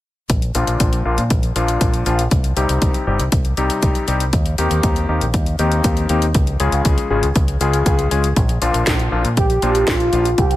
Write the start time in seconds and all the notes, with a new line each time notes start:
0.30 A#1, kick, closed hi-hat
0.42 closed hi-hat
0.55 A#1 A#2 F3 A#3 D4 F4, closed hi-hat
0.67 A#1, closed hi-hat
0.80 A#1, kick, closed hi-hat
0.93 closed hi-hat
1.05 A#1 A#2 F3 A#3 D4 F4
1.18 A#2, closed hi-hat
1.30 A#1, kick, closed hi-hat
1.43 closed hi-hat
1.56 A#1 A#2 F3 A#3 D4 F4, closed hi-hat
1.68 closed hi-hat
1.81 A#1, kick, closed hi-hat
1.94 closed hi-hat
2.06 A#1 F3 A#3 D4 F4, closed hi-hat
2.19 closed hi-hat
2.31 C2, kick, closed hi-hat
2.44 closed hi-hat
2.57 C2 C3 G3 C4 D#4 G4, closed hi-hat
2.69 C2, closed hi-hat
2.82 kick, closed hi-hat
2.94 closed hi-hat
3.07 G1 C3 G3 C4 D#4 G4
3.20 C2, closed hi-hat
3.32 C2, kick, closed hi-hat
3.45 closed hi-hat
3.57 C2 C3 G3 C4 D#4 G4, closed hi-hat
3.70 closed hi-hat
3.83 C2, kick, closed hi-hat
3.95 closed hi-hat
4.08 C2 G3 C4 D#4 G4, closed hi-hat
4.20 closed hi-hat
4.33 D#2, kick, closed hi-hat
4.46 closed hi-hat
4.58 D#2 D#3 A#3 C4 D#4 G4, closed hi-hat
4.71 D#2, closed hi-hat
4.83 D#2, kick, closed hi-hat
4.96 closed hi-hat
5.09 D#2 D#3 A#3 C4 D#4 G4
5.21 A#1, closed hi-hat
5.34 D#2, kick, closed hi-hat
5.46 closed hi-hat
5.59 D#2 D#3 A#3 C4 D#4 G4, closed hi-hat
5.72 closed hi-hat
5.84 D#2, kick, closed hi-hat
5.97 closed hi-hat
6.09 D#2 A#3 C4 D#4 G4, closed hi-hat
6.22 closed hi-hat
6.34 C#2, kick, closed hi-hat
6.47 closed hi-hat
6.60 C#2 C#3 G#3 C#4 F4 G#4, closed hi-hat
6.72 C#2, closed hi-hat
6.85 C#2, kick, closed hi-hat
6.98 closed hi-hat
7.10 G#1 C#3 G#3 C#4 F4 G#4
7.23 C#2, closed hi-hat
7.36 C#2, kick, closed hi-hat
7.48 closed hi-hat
7.61 C#2 C#3 G#3 C#4 F4 G#4, closed hi-hat
7.73 closed hi-hat
7.86 C#2, kick, closed hi-hat
7.99 closed hi-hat
8.11 C#2 G#3 C#4 F4 G#4, closed hi-hat
8.24 closed hi-hat
8.36 A#1, kick, closed hi-hat
8.49 closed hi-hat
8.62 A#1 A#2 F3 A#3 D4 F4, closed hi-hat
8.74 A#1, closed hi-hat
8.87 A#1, kick, snare, closed hi-hat
8.99 closed hi-hat
9.12 A#1 A#2 F3 A#3 D4 F4
9.25 A#2, closed hi-hat
9.37 A#1 G4, kick, closed hi-hat
9.50 closed hi-hat
9.62 A#1 A#2 F3 A#3 D4 F4, closed hi-hat
9.75 closed hi-hat
9.88 F4, kick, snare, closed hi-hat
10.00 closed hi-hat
10.13 A#1 F3 A#3 D4 F4, closed hi-hat
10.25 closed hi-hat
10.38 C2 G4, kick, closed hi-hat
10.51 closed hi-hat